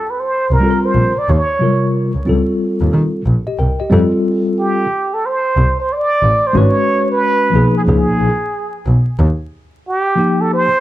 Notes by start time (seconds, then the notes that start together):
Already playing: A4
0.10 B4
0.20 C5
0.51 C2 A#4
0.60 G3 C4 F4
0.64 A4
0.70 A#4
0.85 C5
0.95 A#1
1.18 D5
1.29 D#2 C#5
1.59 C3 F#3 F4 A#4
1.66 G3
2.15 C#2
2.25 C#2 F#3 C4 F4
2.29 G3 A4
2.81 D#2
2.93 D#3
3.26 A#1
3.47 G4 D#5
3.59 C2 A#4 G5
3.80 G4 D#5
3.89 F2 G3 C4 F4 A4
4.59 G4
5.14 A4
5.26 C5
5.57 C2
5.80 C5
5.92 D5
6.23 A1
6.47 C5
6.53 G#1 G#3 C#4 F#4
6.57 B4 C#5
7.12 B4
7.51 B1 F3 A#3 D#4
7.56 G#4
7.77 G#4
7.85 C#2 F3 A#3 D#4 G#4
7.89 G#4
8.09 A#1
8.20 A#1
8.86 B1
9.19 D#2
9.88 G4
10.15 F3 A#3 D#4 G4
10.41 A4
10.53 C5